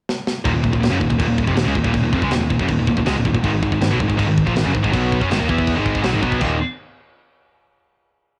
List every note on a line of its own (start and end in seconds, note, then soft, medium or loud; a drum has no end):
0.09 snare medium
0.27 snare medium
0.44 0.53 D#1 medium
0.44 0.52 D#2 medium
0.44 0.52 A#2 loud
0.44 kick loud
0.44 china medium
0.53 0.63 D#1 medium
0.53 0.61 D#2 medium
0.53 0.61 A#2 medium
0.62 0.73 D#1 medium
0.62 0.70 D#2 medium
0.62 0.71 A#2 medium
0.62 kick medium
0.72 0.82 D#1 medium
0.72 0.80 D#2 medium
0.72 0.81 A#2 medium
0.72 kick medium
0.82 0.91 D#1 medium
0.82 0.90 D#2 medium
0.82 0.91 A#2 medium
0.82 snare loud
0.82 china medium
0.90 1.00 F#1 medium
0.90 0.99 F#2 medium
0.90 1.00 C#3 loud
1.00 1.10 D#1 medium
1.00 1.08 D#2 medium
1.00 1.09 A#2 medium
1.00 kick medium
1.09 1.19 D#1 medium
1.09 1.19 D#2 medium
1.09 1.19 A#2 medium
1.09 kick medium
1.20 1.27 D#1 medium
1.20 1.26 D#2 loud
1.20 1.26 A#2 loud
1.20 kick loud
1.20 china medium
1.27 1.46 D#1 medium
1.27 1.43 D#2 medium
1.27 1.43 A#2 medium
1.38 kick medium
1.47 1.55 F1 medium
1.47 1.56 F2 medium
1.47 1.57 C3 loud
1.47 kick medium
1.56 1.65 D#1 medium
1.56 1.67 D#2 medium
1.56 1.66 A#2 medium
1.56 snare loud
1.56 china medium
1.66 1.75 C#2 loud
1.66 1.75 C#3 medium
1.66 1.76 G#3 loud
1.75 1.84 D#1 medium
1.75 1.83 D#2 medium
1.75 1.84 A#2 medium
1.75 kick medium
1.84 1.94 D#1 loud
1.84 1.93 D#2 medium
1.84 1.94 A#2 loud
1.84 kick medium
1.94 2.03 D#1 medium
1.94 2.02 D#2 medium
1.94 2.02 A#2 medium
1.94 kick loud
1.94 china medium
2.03 2.12 D#1 medium
2.03 2.12 D#2 medium
2.03 2.12 A#2 medium
2.12 2.22 F1 loud
2.12 2.22 F2 medium
2.12 2.21 C3 loud
2.12 kick medium
2.22 2.31 C#2 medium
2.22 2.31 C#3 loud
2.22 2.31 G#3 loud
2.22 kick medium
2.31 2.42 D#1 medium
2.31 2.40 D#2 medium
2.31 2.40 A#2 medium
2.31 snare loud
2.31 china medium
2.41 2.51 D#1 medium
2.41 2.49 D#2 medium
2.41 2.49 A#2 medium
2.50 2.59 D#1 medium
2.50 2.59 D#2 medium
2.50 2.59 A#2 medium
2.50 kick medium
2.59 2.69 F#1 loud
2.59 2.68 F#2 medium
2.59 2.68 C#3 loud
2.59 kick medium
2.68 2.78 D#1 medium
2.68 2.77 D#2 medium
2.68 2.78 A#2 medium
2.68 kick loud
2.68 china medium
2.79 2.87 D#1 medium
2.79 2.86 D#2 medium
2.79 2.86 A#2 medium
2.87 2.97 D#1 medium
2.87 2.96 D#2 medium
2.87 2.96 A#2 medium
2.87 kick medium
2.97 3.06 D#1 medium
2.97 3.06 D#2 medium
2.97 3.05 A#2 medium
2.97 kick medium
3.05 3.16 C#2 loud
3.05 3.15 C#3 medium
3.05 3.15 G#3 loud
3.05 snare loud
3.05 china medium
3.15 3.25 D#1 medium
3.15 3.24 D#2 medium
3.15 3.25 A#2 medium
3.25 3.34 D#1 medium
3.25 3.33 D#2 medium
3.25 3.34 A#2 medium
3.25 kick medium
3.35 3.43 D#1 medium
3.35 3.44 D#2 medium
3.35 3.43 A#2 medium
3.35 kick medium
3.43 3.53 G#1 medium
3.43 3.51 G#2 medium
3.43 3.52 D#3 loud
3.43 kick loud
3.43 china medium
3.53 3.62 G#1 medium
3.53 3.61 G#2 medium
3.53 3.61 D#3 medium
3.62 3.72 G#1 medium
3.62 3.69 G#2 medium
3.62 3.70 D#3 medium
3.62 kick medium
3.71 3.81 G#1 medium
3.71 3.79 G#2 medium
3.71 3.80 D#3 medium
3.71 kick medium
3.80 3.91 G#1 medium
3.80 3.89 G#2 medium
3.80 3.89 D#3 medium
3.80 snare loud
3.80 china medium
3.89 4.00 B1 medium
3.89 3.99 B2 medium
3.89 3.99 F#3 loud
3.99 4.09 G#1 medium
3.99 4.07 G#2 medium
3.99 4.07 D#3 medium
3.99 kick medium
4.08 4.19 G#1 medium
4.08 4.16 G#2 medium
4.08 4.16 D#3 medium
4.08 kick medium
4.17 4.28 G#1 loud
4.17 4.25 G#2 loud
4.17 4.25 D#3 loud
4.17 kick loud
4.17 china medium
4.26 4.46 G#1 medium
4.26 4.42 G#2 medium
4.26 4.42 D#3 medium
4.38 kick medium
4.45 4.56 A#1 medium
4.45 4.54 A#2 medium
4.45 4.54 F3 loud
4.45 kick medium
4.54 4.65 G#1 medium
4.54 4.63 G#2 medium
4.54 4.65 D#3 medium
4.54 snare loud
4.54 china medium
4.63 4.75 F#1 loud
4.63 4.73 F#2 medium
4.63 4.72 C#3 loud
4.73 4.84 G#1 medium
4.73 4.80 G#2 medium
4.73 4.81 D#3 medium
4.73 kick medium
4.81 4.93 G#1 medium
4.81 4.91 G#2 medium
4.81 4.91 D#3 loud
4.81 kick medium
4.91 5.19 B1 medium
4.91 5.20 B2 loud
4.91 5.18 F#3 loud
4.91 5.19 B3 loud
4.91 kick loud
4.91 china medium
5.12 kick medium
5.19 5.30 F#2 loud
5.19 5.28 F#3 medium
5.19 5.29 C#4 loud
5.19 kick medium
5.27 5.39 G#1 medium
5.27 5.37 G#2 medium
5.27 5.36 D#3 loud
5.27 china medium
5.32 snare loud
5.37 5.49 D#2 loud
5.37 5.47 D#3 loud
5.37 5.47 A#3 loud
5.47 5.75 E2 loud
5.47 5.74 E3 medium
5.47 5.74 B3 medium
5.47 5.74 E4 loud
5.47 kick medium
5.58 kick medium
5.67 kick medium
5.67 china medium
5.74 6.03 G#1 medium
5.74 6.03 G#2 medium
5.74 6.02 D#3 loud
5.74 6.03 G#3 loud
5.79 6.05 G#2 medium
5.79 6.06 D#3 medium
5.79 6.06 G#3 medium
5.86 kick medium
5.95 kick medium
6.03 6.14 B1 medium
6.03 6.11 B2 medium
6.03 6.12 F#3 loud
6.03 snare loud
6.03 china medium
6.07 6.15 F#3 loud
6.12 6.23 G#1 medium
6.12 6.21 G#2 medium
6.12 6.22 D#3 medium
6.16 6.24 D#3 loud
6.22 6.41 B1 medium
6.22 6.41 B2 medium
6.22 6.41 F#3 medium
6.22 6.41 B3 loud
6.22 kick medium
6.32 kick medium
6.41 6.59 D#1 medium
6.41 6.57 D#2 medium
6.41 6.57 A#2 loud
6.41 6.57 D#3 loud
6.41 6.57 F#3 loud
6.41 6.57 A#3 loud
6.41 6.57 D#4 loud
6.41 kick medium
6.41 crash medium